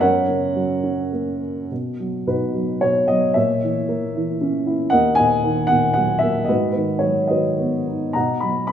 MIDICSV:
0, 0, Header, 1, 2, 480
1, 0, Start_track
1, 0, Key_signature, 5, "major"
1, 0, Tempo, 561798
1, 9, Time_signature, 3, 2, 24, 8
1, 2410, Tempo, 524476
1, 5770, Tempo, 551471
1, 7709, End_track
2, 0, Start_track
2, 0, Title_t, "Upright piano"
2, 0, Program_c, 0, 0
2, 0, Control_c, 0, 64, 127
2, 5, Note_on_c, 0, 78, 83
2, 6, Note_on_c, 0, 42, 57
2, 6, Note_on_c, 0, 70, 64
2, 10, Note_on_c, 0, 73, 62
2, 19, Control_c, 0, 64, 0
2, 183, Control_c, 0, 64, 127
2, 239, Note_on_c, 0, 49, 42
2, 479, Note_on_c, 0, 54, 45
2, 715, Note_on_c, 0, 61, 45
2, 932, Note_off_c, 0, 70, 0
2, 932, Note_off_c, 0, 78, 0
2, 934, Note_off_c, 0, 73, 0
2, 962, Note_on_c, 0, 58, 42
2, 1187, Note_off_c, 0, 49, 0
2, 1424, Note_off_c, 0, 42, 0
2, 1432, Note_off_c, 0, 54, 0
2, 1435, Note_off_c, 0, 61, 0
2, 1442, Note_off_c, 0, 58, 0
2, 1467, Note_on_c, 0, 47, 41
2, 1470, Control_c, 0, 64, 0
2, 1635, Control_c, 0, 64, 127
2, 1708, Note_on_c, 0, 54, 39
2, 1929, Note_off_c, 0, 47, 0
2, 1942, Note_on_c, 0, 47, 46
2, 1943, Note_on_c, 0, 71, 60
2, 1944, Note_on_c, 0, 66, 40
2, 1945, Note_on_c, 0, 63, 39
2, 2162, Note_off_c, 0, 54, 0
2, 2175, Note_on_c, 0, 54, 39
2, 2402, Note_on_c, 0, 73, 75
2, 2408, Note_off_c, 0, 47, 0
2, 2422, Note_on_c, 0, 47, 42
2, 2429, Note_off_c, 0, 71, 0
2, 2629, Note_off_c, 0, 63, 0
2, 2629, Note_off_c, 0, 66, 0
2, 2645, Note_on_c, 0, 75, 84
2, 2655, Note_off_c, 0, 54, 0
2, 2664, Note_off_c, 0, 73, 0
2, 2669, Note_on_c, 0, 54, 52
2, 2885, Note_on_c, 0, 76, 77
2, 2892, Note_off_c, 0, 47, 0
2, 2896, Note_on_c, 0, 73, 52
2, 2897, Note_off_c, 0, 54, 0
2, 2900, Note_off_c, 0, 75, 0
2, 2901, Note_on_c, 0, 46, 53
2, 2912, Control_c, 0, 64, 0
2, 3097, Control_c, 0, 64, 127
2, 3148, Note_on_c, 0, 52, 42
2, 3386, Note_on_c, 0, 58, 53
2, 3616, Note_off_c, 0, 52, 0
2, 3630, Note_on_c, 0, 52, 46
2, 3818, Note_off_c, 0, 76, 0
2, 3823, Note_off_c, 0, 73, 0
2, 3866, Note_on_c, 0, 61, 50
2, 4099, Note_on_c, 0, 64, 55
2, 4298, Note_off_c, 0, 46, 0
2, 4309, Note_off_c, 0, 58, 0
2, 4311, Note_on_c, 0, 78, 96
2, 4317, Note_off_c, 0, 52, 0
2, 4322, Note_off_c, 0, 61, 0
2, 4327, Note_off_c, 0, 64, 0
2, 4332, Note_on_c, 0, 70, 65
2, 4332, Note_on_c, 0, 75, 64
2, 4335, Note_on_c, 0, 39, 52
2, 4345, Control_c, 0, 64, 0
2, 4530, Control_c, 0, 64, 127
2, 4543, Note_on_c, 0, 80, 106
2, 4552, Note_off_c, 0, 75, 0
2, 4565, Note_off_c, 0, 78, 0
2, 4566, Note_on_c, 0, 75, 68
2, 4578, Note_on_c, 0, 46, 49
2, 4806, Note_on_c, 0, 51, 57
2, 5011, Note_off_c, 0, 70, 0
2, 5017, Note_on_c, 0, 78, 94
2, 5036, Note_off_c, 0, 46, 0
2, 5050, Note_off_c, 0, 80, 0
2, 5050, Note_on_c, 0, 46, 49
2, 5246, Note_off_c, 0, 78, 0
2, 5249, Note_off_c, 0, 75, 0
2, 5260, Note_on_c, 0, 78, 86
2, 5291, Note_on_c, 0, 54, 46
2, 5491, Note_on_c, 0, 76, 87
2, 5521, Note_off_c, 0, 78, 0
2, 5533, Note_on_c, 0, 58, 52
2, 5727, Note_on_c, 0, 75, 68
2, 5734, Note_off_c, 0, 39, 0
2, 5740, Note_off_c, 0, 51, 0
2, 5749, Note_off_c, 0, 46, 0
2, 5757, Note_off_c, 0, 54, 0
2, 5759, Note_off_c, 0, 76, 0
2, 5765, Note_off_c, 0, 58, 0
2, 5765, Note_on_c, 0, 71, 55
2, 5766, Note_on_c, 0, 66, 51
2, 5769, Note_on_c, 0, 44, 47
2, 5780, Control_c, 0, 64, 0
2, 5945, Control_c, 0, 64, 127
2, 5955, Note_off_c, 0, 71, 0
2, 5968, Note_on_c, 0, 71, 51
2, 5989, Note_off_c, 0, 75, 0
2, 6001, Note_on_c, 0, 51, 40
2, 6202, Note_on_c, 0, 73, 63
2, 6226, Note_off_c, 0, 71, 0
2, 6238, Note_on_c, 0, 54, 41
2, 6438, Note_off_c, 0, 66, 0
2, 6440, Note_off_c, 0, 73, 0
2, 6451, Note_on_c, 0, 75, 66
2, 6460, Note_off_c, 0, 51, 0
2, 6473, Note_on_c, 0, 51, 40
2, 6478, Note_on_c, 0, 71, 47
2, 6479, Note_on_c, 0, 66, 46
2, 6728, Note_on_c, 0, 59, 42
2, 6926, Note_off_c, 0, 75, 0
2, 6974, Note_on_c, 0, 63, 39
2, 7177, Note_off_c, 0, 44, 0
2, 7180, Note_off_c, 0, 66, 0
2, 7180, Note_off_c, 0, 71, 0
2, 7185, Note_off_c, 0, 54, 0
2, 7190, Note_off_c, 0, 51, 0
2, 7198, Note_on_c, 0, 82, 72
2, 7201, Note_off_c, 0, 59, 0
2, 7207, Note_off_c, 0, 63, 0
2, 7216, Note_on_c, 0, 78, 52
2, 7221, Note_on_c, 0, 75, 57
2, 7224, Note_on_c, 0, 47, 46
2, 7225, Control_c, 0, 64, 0
2, 7358, Control_c, 0, 64, 127
2, 7426, Note_off_c, 0, 82, 0
2, 7434, Note_on_c, 0, 83, 72
2, 7454, Note_on_c, 0, 54, 43
2, 7654, Note_off_c, 0, 83, 0
2, 7667, Note_on_c, 0, 83, 79
2, 7709, Note_off_c, 0, 47, 0
2, 7709, Note_off_c, 0, 54, 0
2, 7709, Note_off_c, 0, 75, 0
2, 7709, Note_off_c, 0, 78, 0
2, 7709, Note_off_c, 0, 83, 0
2, 7709, End_track
0, 0, End_of_file